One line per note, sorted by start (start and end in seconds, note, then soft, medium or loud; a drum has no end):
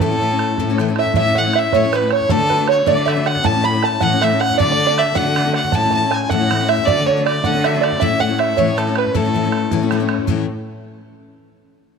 0.00 0.48 A2 loud
0.00 0.11 A2 medium
0.00 0.11 E3 medium
0.00 0.11 A3 medium
0.00 0.11 C#4 medium
0.00 0.10 E4 medium
0.00 0.78 A4 loud
0.00 0.75 A4 medium
0.11 0.20 A3 soft
0.11 0.21 C#4 medium
0.11 0.21 E4 medium
0.20 0.30 E3 soft
0.20 0.30 A3 medium
0.20 0.31 C#4 medium
0.20 0.30 E4 medium
0.20 bodhran soft
0.31 0.59 A3 soft
0.31 0.59 C#4 soft
0.31 0.58 E4 medium
0.39 bodhran medium
0.58 1.06 A2 loud
0.58 0.69 A2 medium
0.58 0.69 E3 medium
0.58 0.69 A3 medium
0.58 0.69 C#4 medium
0.58 0.68 E4 medium
0.58 bodhran medium
0.70 0.79 A3 soft
0.70 0.79 C#4 medium
0.70 0.79 E4 medium
0.78 0.88 E3 medium
0.78 0.89 A3 medium
0.78 0.88 C#4 medium
0.78 0.87 E4 medium
0.78 bodhran medium
0.88 1.15 A3 soft
0.88 1.15 C#4 medium
0.88 1.15 E4 medium
0.96 1.15 E5 medium
0.96 bodhran medium
1.05 bodhran soft
1.14 1.62 A2 loud
1.14 1.26 A2 medium
1.14 1.26 E3 medium
1.14 1.26 A3 medium
1.14 1.26 C#4 medium
1.14 1.25 E4 medium
1.14 1.35 E5 medium
1.14 1.40 E5 loud
1.14 bodhran medium
1.26 1.36 A3 soft
1.26 1.36 C#4 medium
1.26 1.36 E4 medium
1.35 1.45 E3 medium
1.35 1.46 A3 medium
1.35 1.46 C#4 medium
1.35 1.45 E4 medium
1.35 1.55 F#5 medium
1.35 1.60 F#5 loud
1.35 bodhran soft
1.46 1.74 A3 soft
1.46 1.73 C#4 soft
1.46 1.74 E4 medium
1.53 1.72 E5 medium
1.53 bodhran medium
1.59 1.78 E5 loud
1.72 2.19 A2 medium
1.72 1.84 A2 medium
1.72 1.84 E3 medium
1.72 1.84 A3 medium
1.72 1.83 C#4 medium
1.72 1.82 E4 medium
1.72 1.94 C#5 medium
1.72 bodhran medium
1.76 1.97 C#5 loud
1.84 1.92 A3 soft
1.84 1.93 C#4 soft
1.84 1.93 E4 medium
1.92 2.02 E3 medium
1.92 2.02 A3 medium
1.92 2.02 C#4 medium
1.92 2.01 E4 medium
1.92 2.10 B4 medium
1.92 2.12 B4 medium
1.92 bodhran medium
2.02 2.29 A3 medium
2.02 2.31 C#4 medium
2.02 2.30 E4 medium
2.11 2.29 C#5 medium
2.11 2.33 C#5 loud
2.11 bodhran medium
2.21 bodhran soft
2.29 2.40 D2 medium
2.29 2.40 A2 medium
2.29 2.77 D3 medium
2.29 2.40 D3 medium
2.29 2.39 A3 medium
2.29 2.39 D4 loud
2.29 2.37 F#4 medium
2.29 2.49 A4 medium
2.29 2.70 A4 loud
2.29 bodhran medium
2.39 2.47 D3 soft
2.39 2.47 A3 soft
2.39 2.48 D4 medium
2.39 2.49 F#4 medium
2.49 2.58 D3 medium
2.49 2.58 A3 medium
2.49 2.57 D4 medium
2.49 2.56 F#4 medium
2.49 2.69 B4 medium
2.49 bodhran soft
2.57 2.86 D3 soft
2.57 2.86 A3 medium
2.57 2.86 D4 medium
2.57 2.86 F#4 medium
2.67 2.86 C#5 medium
2.67 2.89 C#5 medium
2.67 bodhran medium
2.86 2.97 D2 medium
2.86 2.97 A2 medium
2.86 3.34 D3 loud
2.86 2.97 D3 medium
2.86 2.96 A3 medium
2.86 2.96 D4 medium
2.86 2.95 F#4 loud
2.86 3.06 D5 medium
2.86 3.10 D5 loud
2.86 bodhran medium
2.96 3.04 D3 soft
2.96 3.05 A3 medium
2.96 3.06 D4 medium
2.96 3.07 F#4 medium
3.05 3.16 D3 medium
3.05 3.15 A3 medium
3.05 3.15 D4 medium
3.05 3.14 F#4 medium
3.05 3.24 E5 medium
3.05 3.28 E5 medium
3.05 bodhran medium
3.15 3.43 D3 medium
3.15 3.43 A3 soft
3.15 3.43 D4 medium
3.15 3.44 F#4 medium
3.26 3.44 F#5 medium
3.26 3.48 F#5 loud
3.26 bodhran medium
3.36 bodhran soft
3.43 3.54 A2 medium
3.43 3.91 A2 loud
3.43 3.54 E3 medium
3.43 3.55 A3 loud
3.43 3.54 C#4 medium
3.43 3.53 E4 loud
3.43 3.63 A5 medium
3.43 3.67 A5 loud
3.43 bodhran loud
3.54 3.64 A3 soft
3.54 3.64 C#4 medium
3.54 3.64 E4 medium
3.64 3.74 E3 medium
3.64 3.73 A3 medium
3.64 3.73 C#4 medium
3.64 3.72 E4 medium
3.64 3.82 B5 medium
3.64 3.87 B5 loud
3.64 bodhran soft
3.73 4.01 A3 soft
3.73 4.01 C#4 medium
3.73 4.01 E4 medium
3.83 4.03 A5 medium
3.83 4.04 A5 loud
3.83 bodhran medium
4.00 4.12 A2 medium
4.00 4.49 A2 loud
4.00 4.12 E3 medium
4.00 4.12 A3 medium
4.00 4.12 C#4 medium
4.00 4.11 E4 loud
4.00 4.21 F#5 medium
4.00 4.25 F#5 loud
4.00 bodhran medium
4.12 4.20 A3 soft
4.12 4.21 C#4 medium
4.12 4.22 E4 medium
4.21 4.31 E3 medium
4.21 4.31 A3 medium
4.21 4.32 C#4 medium
4.21 4.31 E4 medium
4.21 4.39 E5 medium
4.21 4.42 E5 loud
4.21 bodhran medium
4.32 4.59 A3 soft
4.32 4.59 C#4 soft
4.32 4.59 E4 medium
4.40 4.59 F#5 loud
4.40 4.60 F#5 medium
4.40 bodhran medium
4.50 bodhran soft
4.57 4.69 D2 medium
4.57 4.69 A2 medium
4.57 5.06 D3 medium
4.57 4.69 D3 medium
4.57 4.68 A3 medium
4.57 4.68 D4 medium
4.57 4.67 F#4 medium
4.57 4.70 D5 medium
4.57 5.00 D5 loud
4.57 bodhran medium
4.68 4.76 D3 soft
4.68 4.77 A3 medium
4.68 4.77 D4 medium
4.68 4.79 F#4 medium
4.68 4.85 D5 medium
4.77 4.88 D3 medium
4.77 4.87 A3 medium
4.77 4.87 D4 medium
4.77 4.86 F#4 medium
4.77 bodhran soft
4.87 5.14 D3 soft
4.87 5.14 A3 medium
4.87 5.15 D4 medium
4.87 5.15 F#4 medium
4.87 4.98 D5 medium
4.98 5.16 E5 medium
4.98 5.19 E5 loud
4.98 bodhran medium
5.15 5.26 D2 medium
5.15 5.26 A2 medium
5.15 5.26 D3 medium
5.15 5.63 D3 loud
5.15 5.26 A3 medium
5.15 5.26 D4 medium
5.15 5.25 F#4 medium
5.15 5.52 F#5 loud
5.15 5.55 F#5 loud
5.15 bodhran medium
5.26 5.35 D3 soft
5.26 5.36 A3 soft
5.26 5.36 D4 medium
5.26 5.36 F#4 medium
5.36 5.46 D3 medium
5.36 5.45 A3 medium
5.36 5.45 D4 medium
5.36 5.44 F#4 medium
5.36 bodhran medium
5.45 5.73 D3 soft
5.45 5.73 A3 medium
5.45 5.74 D4 medium
5.45 5.73 F#4 medium
5.54 5.71 F#5 medium
5.54 5.77 F#5 loud
5.54 bodhran medium
5.64 bodhran soft
5.72 6.20 A2 medium
5.72 5.83 A2 medium
5.72 5.84 E3 medium
5.72 5.84 A3 medium
5.72 5.83 C#4 medium
5.72 5.83 E4 loud
5.72 5.89 A5 medium
5.72 5.93 A5 loud
5.72 bodhran medium
5.84 5.92 A3 soft
5.84 5.93 C#4 soft
5.84 5.94 E4 medium
5.91 6.02 E3 medium
5.91 6.03 A3 medium
5.91 6.09 A5 medium
5.91 6.16 A5 loud
5.91 bodhran soft
5.95 6.02 C#4 medium
5.95 6.02 E4 medium
6.03 6.31 A3 medium
6.03 6.31 C#4 soft
6.03 6.30 E4 soft
6.11 6.29 G#5 medium
6.11 6.23 G#5 loud
6.11 bodhran medium
6.23 6.32 G#5 medium
6.29 6.77 A2 loud
6.29 6.41 A2 medium
6.29 6.41 E3 medium
6.29 6.41 A3 medium
6.29 6.41 C#4 medium
6.29 6.40 E4 medium
6.29 6.66 F#5 medium
6.29 6.70 F#5 loud
6.29 bodhran medium
6.41 6.50 A3 soft
6.41 6.51 C#4 medium
6.41 6.51 E4 medium
6.50 6.60 E3 medium
6.50 6.60 A3 medium
6.50 6.59 C#4 medium
6.50 6.58 E4 medium
6.50 bodhran medium
6.60 6.87 A3 soft
6.60 6.88 C#4 medium
6.60 6.87 E4 medium
6.69 6.87 E5 loud
6.69 6.86 E5 medium
6.69 bodhran medium
6.78 bodhran soft
6.86 6.98 D2 medium
6.86 6.98 A2 medium
6.86 7.34 D3 loud
6.86 6.97 D3 medium
6.86 6.98 A3 medium
6.86 6.98 D4 medium
6.86 6.97 F#4 medium
6.86 7.08 D5 loud
6.86 7.06 D5 medium
6.86 bodhran medium
6.98 7.06 D3 soft
6.98 7.07 A3 medium
6.98 7.07 D4 medium
6.98 7.08 F#4 medium
7.06 7.16 D3 medium
7.06 7.17 A3 medium
7.06 7.16 D4 medium
7.06 7.15 F#4 medium
7.06 7.25 C#5 medium
7.06 7.26 C#5 medium
7.06 bodhran soft
7.17 7.44 D3 soft
7.17 7.44 A3 soft
7.17 7.44 D4 medium
7.17 7.44 F#4 medium
7.26 7.45 D5 medium
7.26 7.48 D5 medium
7.26 bodhran medium
7.44 7.54 D2 medium
7.44 7.55 A2 medium
7.44 7.91 D3 loud
7.44 7.54 D3 medium
7.44 7.54 A3 medium
7.44 7.53 D4 medium
7.44 7.52 F#4 medium
7.44 7.63 F#5 medium
7.44 7.67 F#5 loud
7.44 bodhran medium
7.54 7.63 D3 soft
7.54 7.64 A3 medium
7.54 7.64 D4 medium
7.54 7.64 F#4 medium
7.64 7.74 D3 medium
7.64 7.74 A3 medium
7.64 7.74 D4 medium
7.64 7.73 F#4 medium
7.64 7.81 E5 medium
7.64 7.86 E5 medium
7.64 bodhran medium
7.74 8.01 D3 medium
7.74 8.00 A3 medium
7.74 8.02 D4 medium
7.74 8.02 F#4 medium
7.81 7.99 D5 medium
7.81 8.04 D5 medium
7.81 bodhran medium
7.92 bodhran soft
8.00 8.11 A2 medium
8.00 8.48 A2 medium
8.00 8.11 E3 medium
8.00 8.11 A3 medium
8.00 8.10 C#4 loud
8.00 8.09 E4 loud
8.00 8.19 E5 medium
8.00 8.22 E5 loud
8.00 bodhran medium
8.10 8.20 A3 soft
8.10 8.20 C#4 medium
8.10 8.21 E4 medium
8.20 8.30 E3 medium
8.20 8.30 A3 medium
8.20 8.29 C#4 medium
8.20 8.28 E4 medium
8.20 8.38 F#5 medium
8.20 8.40 F#5 medium
8.20 bodhran soft
8.29 8.57 A3 soft
8.29 8.58 C#4 medium
8.29 8.58 E4 medium
8.39 8.60 E5 medium
8.39 8.57 E5 medium
8.39 bodhran medium
8.57 8.68 A2 medium
8.57 9.04 A2 loud
8.57 8.68 E3 medium
8.57 8.68 A3 medium
8.57 8.67 C#4 medium
8.57 8.66 E4 medium
8.57 8.76 C#5 medium
8.57 8.79 C#5 loud
8.57 bodhran medium
8.68 8.77 A3 soft
8.68 8.77 C#4 medium
8.68 8.78 E4 medium
8.78 8.87 E3 medium
8.78 8.88 A3 medium
8.78 8.87 C#4 medium
8.78 8.86 E4 medium
8.78 8.98 A4 medium
8.78 8.95 A4 medium
8.78 bodhran medium
8.87 9.14 A3 soft
8.87 9.14 C#4 medium
8.87 9.15 E4 medium
8.96 9.17 B4 medium
8.96 9.14 B4 medium
8.96 bodhran medium
9.05 bodhran soft
9.14 9.25 A2 medium
9.14 9.62 A2 loud
9.14 9.25 E3 medium
9.14 9.25 A3 medium
9.14 9.25 C#4 medium
9.14 9.23 E4 medium
9.14 9.88 A4 medium
9.14 9.92 A4 medium
9.14 bodhran medium
9.25 9.34 A3 soft
9.25 9.35 C#4 soft
9.25 9.35 E4 medium
9.34 9.44 E3 medium
9.34 9.45 A3 medium
9.34 9.44 C#4 medium
9.34 9.43 E4 medium
9.34 bodhran soft
9.44 9.71 A3 soft
9.44 9.72 C#4 medium
9.44 9.72 E4 medium
9.52 bodhran medium
9.71 10.18 A2 medium
9.71 9.82 A2 medium
9.71 9.82 E3 medium
9.71 9.82 A3 loud
9.71 9.82 C#4 loud
9.71 9.81 E4 loud
9.71 bodhran medium
9.82 9.91 A3 medium
9.82 9.91 C#4 medium
9.82 9.92 E4 medium
9.91 10.01 E3 medium
9.91 10.01 A3 medium
9.91 10.00 C#4 medium
9.91 9.99 E4 medium
9.91 bodhran medium
10.00 10.27 A3 soft
10.00 10.28 C#4 medium
10.00 10.28 E4 medium
10.09 bodhran medium
10.18 bodhran soft
10.27 10.44 A2 medium
10.27 10.47 A2 medium
10.27 10.44 E3 loud
10.27 10.45 A3 medium
10.27 10.45 C#4 medium
10.27 10.45 E4 loud
10.27 bodhran medium